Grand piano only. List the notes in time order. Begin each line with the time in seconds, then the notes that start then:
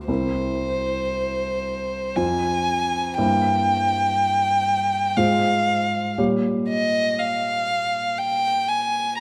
Already playing: D2 B3 F4 G4
0.08 C2 C4 E4 A#4
2.16 F2 C4 F4 C5
3.18 G2 A#3 E4 C5
5.17 G#2 G#3 F4 C5
6.18 A#2 G3 G4 C#5